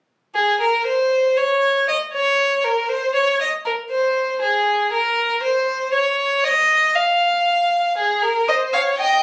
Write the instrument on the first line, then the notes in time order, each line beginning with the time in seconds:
violin
0.35 G#4
0.61 A#4
0.86 C5
1.37 C#5
1.88 D#5
2.14 C#5
2.64 A#4
2.89 C5
3.15 C#5
3.40 D#5
3.65 A#4
3.91 C5
4.42 G#4
4.92 A#4
5.43 C5
5.93 C#5
6.45 D#5
6.96 F5
7.97 G#4
8.23 A#4
8.48 C5 D#5
8.73 C#5 F5
8.98 D#5 G5